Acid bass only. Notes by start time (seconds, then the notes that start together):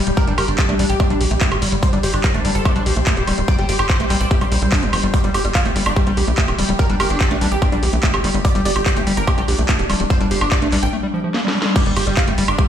0.07 G3
0.17 G3
0.27 G3
0.38 G4
0.69 A3
0.79 G3
1.00 A3
1.10 G3
1.21 G4
1.31 A3
1.41 A3
1.52 G4
1.62 G3
1.72 G3
1.83 G3
1.93 G3
2.03 G4
2.34 A3
2.45 G3
2.65 A3
2.76 G3
2.86 G4
2.96 A3
3.07 A3
3.17 G4
3.27 G3
3.38 G3
3.48 G3
3.59 G3
3.69 G4
4.00 A3
4.10 G3
4.31 A3
4.41 G3
4.52 G3
4.62 G3
4.72 D4
4.83 G3
4.93 F3
5.03 G3
5.14 G3
5.24 G3
5.34 G4
5.65 A3
5.76 G3
5.96 A3
6.07 G3
6.17 G4
6.28 A3
6.38 A3
6.48 G4
6.59 G3
6.69 G3
6.79 G3
6.90 G3
7.00 G4
7.31 A3
7.41 G3
7.62 A3
7.72 G3
7.83 G4
7.93 A3
8.03 A3
8.14 G4
8.24 G3
8.34 G3
8.45 G3
8.55 G3
8.65 G4
8.96 A3
9.07 G3
9.28 A3
9.38 G3
9.48 G4
9.59 A3
9.69 A3
9.79 G4
9.90 G3
10.00 G3
10.10 G3
10.21 G3
10.31 G4
10.62 A3
10.72 G3
10.93 A3
11.03 G3
11.14 F3
11.24 F3
11.34 A#3
11.45 G3
11.55 G3
11.65 G3
11.76 G3
11.86 G3
11.96 G4
12.27 A3
12.38 G3
12.58 A3